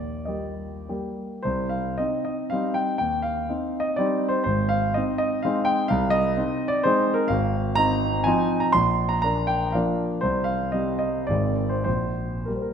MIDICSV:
0, 0, Header, 1, 2, 480
1, 0, Start_track
1, 0, Tempo, 628272
1, 682, Tempo, 540054
1, 1176, Time_signature, 3, 2, 24, 8
1, 2122, Tempo, 490998
1, 4522, Tempo, 469484
1, 7402, Tempo, 488599
1, 9802, Tempo, 532860
1, 10762, Tempo, 569260
1, 11242, Tempo, 614754
1, 11922, End_track
2, 0, Start_track
2, 0, Title_t, "Grand piano"
2, 0, Program_c, 0, 0
2, 0, Control_c, 0, 64, 127
2, 0, Note_on_c, 0, 39, 46
2, 0, Note_on_c, 0, 74, 67
2, 190, Note_off_c, 0, 39, 0
2, 193, Note_on_c, 0, 75, 48
2, 198, Note_off_c, 0, 74, 0
2, 209, Note_on_c, 0, 55, 31
2, 210, Note_on_c, 0, 58, 35
2, 215, Note_on_c, 0, 67, 37
2, 652, Note_off_c, 0, 55, 0
2, 653, Note_off_c, 0, 58, 0
2, 655, Note_off_c, 0, 67, 0
2, 675, Note_off_c, 0, 75, 0
2, 679, Note_on_c, 0, 55, 39
2, 682, Note_on_c, 0, 58, 38
2, 684, Note_on_c, 0, 67, 42
2, 696, Control_c, 0, 64, 0
2, 1139, Note_off_c, 0, 55, 0
2, 1140, Note_off_c, 0, 58, 0
2, 1141, Note_off_c, 0, 67, 0
2, 1155, Note_on_c, 0, 72, 69
2, 1175, Note_on_c, 0, 36, 51
2, 1330, Control_c, 0, 64, 127
2, 1394, Note_on_c, 0, 77, 69
2, 1397, Note_off_c, 0, 72, 0
2, 1641, Note_off_c, 0, 36, 0
2, 1645, Note_on_c, 0, 75, 64
2, 1649, Note_off_c, 0, 77, 0
2, 1663, Note_on_c, 0, 60, 43
2, 1665, Control_c, 0, 64, 0
2, 1667, Note_on_c, 0, 63, 40
2, 1872, Note_off_c, 0, 75, 0
2, 1885, Note_on_c, 0, 75, 70
2, 2089, Note_off_c, 0, 60, 0
2, 2091, Note_off_c, 0, 63, 0
2, 2108, Note_on_c, 0, 77, 76
2, 2115, Note_off_c, 0, 75, 0
2, 2128, Note_on_c, 0, 55, 45
2, 2131, Note_on_c, 0, 60, 48
2, 2137, Note_on_c, 0, 63, 53
2, 2347, Note_on_c, 0, 79, 80
2, 2350, Note_off_c, 0, 77, 0
2, 2554, Note_off_c, 0, 55, 0
2, 2556, Note_off_c, 0, 60, 0
2, 2559, Note_off_c, 0, 63, 0
2, 2566, Note_off_c, 0, 79, 0
2, 2581, Note_on_c, 0, 79, 77
2, 2603, Note_on_c, 0, 39, 52
2, 2765, Control_c, 0, 64, 127
2, 2818, Note_on_c, 0, 77, 79
2, 2822, Note_off_c, 0, 79, 0
2, 3066, Note_off_c, 0, 39, 0
2, 3081, Note_on_c, 0, 63, 46
2, 3083, Note_on_c, 0, 60, 44
2, 3087, Control_c, 0, 64, 0
2, 3380, Note_on_c, 0, 75, 82
2, 3399, Note_off_c, 0, 77, 0
2, 3529, Note_off_c, 0, 60, 0
2, 3529, Note_off_c, 0, 63, 0
2, 3541, Note_on_c, 0, 74, 80
2, 3552, Note_off_c, 0, 75, 0
2, 3562, Note_on_c, 0, 55, 55
2, 3564, Note_on_c, 0, 60, 55
2, 3571, Note_on_c, 0, 63, 58
2, 3855, Note_on_c, 0, 72, 76
2, 3863, Note_off_c, 0, 74, 0
2, 3989, Note_off_c, 0, 55, 0
2, 3989, Note_off_c, 0, 72, 0
2, 3990, Note_off_c, 0, 60, 0
2, 3993, Note_off_c, 0, 63, 0
2, 4004, Note_on_c, 0, 72, 82
2, 4026, Note_on_c, 0, 32, 57
2, 4242, Control_c, 0, 64, 127
2, 4248, Note_on_c, 0, 77, 94
2, 4256, Note_off_c, 0, 72, 0
2, 4498, Note_on_c, 0, 75, 75
2, 4504, Note_off_c, 0, 32, 0
2, 4510, Note_off_c, 0, 77, 0
2, 4520, Note_on_c, 0, 60, 52
2, 4522, Note_on_c, 0, 63, 55
2, 4528, Control_c, 0, 64, 0
2, 4727, Note_off_c, 0, 75, 0
2, 4742, Note_on_c, 0, 75, 91
2, 4972, Note_off_c, 0, 60, 0
2, 4973, Note_off_c, 0, 63, 0
2, 4990, Note_on_c, 0, 77, 85
2, 4997, Note_off_c, 0, 75, 0
2, 5013, Note_on_c, 0, 56, 58
2, 5013, Note_on_c, 0, 60, 59
2, 5019, Note_on_c, 0, 63, 63
2, 5217, Note_on_c, 0, 79, 94
2, 5239, Note_off_c, 0, 77, 0
2, 5448, Note_off_c, 0, 56, 0
2, 5448, Note_off_c, 0, 60, 0
2, 5451, Note_off_c, 0, 63, 0
2, 5457, Note_on_c, 0, 77, 93
2, 5472, Note_off_c, 0, 79, 0
2, 5478, Note_on_c, 0, 36, 74
2, 5684, Note_on_c, 0, 75, 102
2, 5698, Control_c, 0, 64, 127
2, 5711, Note_off_c, 0, 77, 0
2, 5952, Note_off_c, 0, 36, 0
2, 5953, Note_on_c, 0, 60, 53
2, 5956, Note_on_c, 0, 63, 57
2, 5983, Control_c, 0, 64, 0
2, 6274, Note_on_c, 0, 74, 94
2, 6279, Note_off_c, 0, 75, 0
2, 6411, Note_off_c, 0, 60, 0
2, 6412, Note_off_c, 0, 63, 0
2, 6430, Note_on_c, 0, 72, 94
2, 6448, Note_off_c, 0, 74, 0
2, 6450, Note_on_c, 0, 56, 65
2, 6451, Note_on_c, 0, 60, 60
2, 6454, Note_on_c, 0, 63, 68
2, 6741, Note_on_c, 0, 70, 85
2, 6758, Note_off_c, 0, 72, 0
2, 6878, Note_off_c, 0, 56, 0
2, 6879, Note_off_c, 0, 60, 0
2, 6880, Note_off_c, 0, 63, 0
2, 6884, Note_on_c, 0, 77, 91
2, 6905, Note_on_c, 0, 32, 70
2, 6909, Note_off_c, 0, 70, 0
2, 7111, Control_c, 0, 64, 127
2, 7371, Note_on_c, 0, 82, 118
2, 7375, Note_off_c, 0, 32, 0
2, 7379, Note_off_c, 0, 77, 0
2, 7391, Note_on_c, 0, 60, 55
2, 7395, Note_on_c, 0, 63, 58
2, 7838, Note_off_c, 0, 60, 0
2, 7840, Note_off_c, 0, 63, 0
2, 7847, Note_on_c, 0, 80, 86
2, 7865, Note_on_c, 0, 53, 63
2, 7868, Note_off_c, 0, 82, 0
2, 7873, Note_on_c, 0, 60, 62
2, 7879, Note_on_c, 0, 63, 71
2, 7893, Control_c, 0, 64, 0
2, 8204, Note_on_c, 0, 82, 89
2, 8216, Note_off_c, 0, 80, 0
2, 8300, Note_off_c, 0, 53, 0
2, 8304, Note_off_c, 0, 60, 0
2, 8307, Note_off_c, 0, 63, 0
2, 8326, Note_on_c, 0, 84, 97
2, 8333, Note_off_c, 0, 82, 0
2, 8343, Note_on_c, 0, 34, 68
2, 8539, Control_c, 0, 64, 127
2, 8681, Note_on_c, 0, 82, 85
2, 8694, Note_off_c, 0, 84, 0
2, 8796, Note_off_c, 0, 82, 0
2, 8811, Note_on_c, 0, 82, 92
2, 8814, Note_off_c, 0, 34, 0
2, 8830, Note_on_c, 0, 58, 54
2, 8835, Note_on_c, 0, 62, 53
2, 9058, Note_on_c, 0, 79, 92
2, 9072, Note_off_c, 0, 82, 0
2, 9285, Note_off_c, 0, 58, 0
2, 9287, Note_off_c, 0, 62, 0
2, 9306, Note_on_c, 0, 77, 75
2, 9313, Note_off_c, 0, 79, 0
2, 9325, Note_on_c, 0, 53, 61
2, 9334, Note_on_c, 0, 58, 56
2, 9335, Control_c, 0, 64, 0
2, 9335, Note_on_c, 0, 62, 64
2, 9760, Note_off_c, 0, 53, 0
2, 9764, Note_off_c, 0, 58, 0
2, 9765, Note_off_c, 0, 62, 0
2, 9783, Note_on_c, 0, 72, 81
2, 9790, Note_off_c, 0, 77, 0
2, 9801, Note_on_c, 0, 36, 56
2, 9969, Control_c, 0, 64, 127
2, 9995, Note_on_c, 0, 77, 85
2, 10013, Note_off_c, 0, 72, 0
2, 10245, Note_on_c, 0, 75, 68
2, 10247, Note_off_c, 0, 36, 0
2, 10247, Note_off_c, 0, 77, 0
2, 10258, Note_on_c, 0, 55, 46
2, 10261, Note_on_c, 0, 60, 46
2, 10473, Note_off_c, 0, 75, 0
2, 10486, Note_on_c, 0, 75, 72
2, 10722, Note_off_c, 0, 55, 0
2, 10724, Note_off_c, 0, 60, 0
2, 10738, Note_on_c, 0, 74, 72
2, 10747, Note_off_c, 0, 75, 0
2, 10757, Note_on_c, 0, 32, 55
2, 10758, Note_on_c, 0, 51, 43
2, 10762, Note_on_c, 0, 56, 39
2, 10770, Note_on_c, 0, 60, 39
2, 10772, Control_c, 0, 64, 0
2, 10936, Control_c, 0, 64, 127
2, 11098, Note_on_c, 0, 72, 61
2, 11107, Note_off_c, 0, 74, 0
2, 11206, Note_off_c, 0, 51, 0
2, 11207, Note_off_c, 0, 56, 0
2, 11211, Note_off_c, 0, 60, 0
2, 11211, Note_off_c, 0, 72, 0
2, 11224, Note_off_c, 0, 32, 0
2, 11224, Note_on_c, 0, 72, 73
2, 11237, Note_on_c, 0, 34, 50
2, 11250, Control_c, 0, 64, 0
2, 11403, Control_c, 0, 64, 127
2, 11702, Note_off_c, 0, 34, 0
2, 11704, Note_on_c, 0, 70, 51
2, 11711, Note_off_c, 0, 72, 0
2, 11722, Note_on_c, 0, 55, 39
2, 11726, Note_on_c, 0, 58, 41
2, 11732, Control_c, 0, 64, 0
2, 11779, Note_off_c, 0, 70, 0
2, 11833, Note_on_c, 0, 70, 50
2, 11922, Note_off_c, 0, 55, 0
2, 11922, Note_off_c, 0, 58, 0
2, 11922, Note_off_c, 0, 70, 0
2, 11922, End_track
0, 0, End_of_file